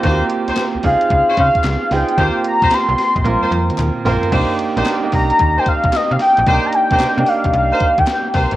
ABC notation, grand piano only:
X:1
M:4/4
L:1/16
Q:"Swing 16ths" 1/4=112
K:Ebmix
V:1 name="Grand piano"
[B,CF_G=G]4- [B,CF_G=G] z [CEFA]6 z2 [CEFA] z | [B,CFG]4- [B,CFG] z3 [B,CFB]4- [B,CFB] z [B,CFB] z | [K:Cm] [B,DEG]2 z [B,DEG] z [B,DEG]4- [B,DEG] z6 | [B,DEG]2 z [B,DEG] z [B,DEG]4- [B,DEG] z6 |]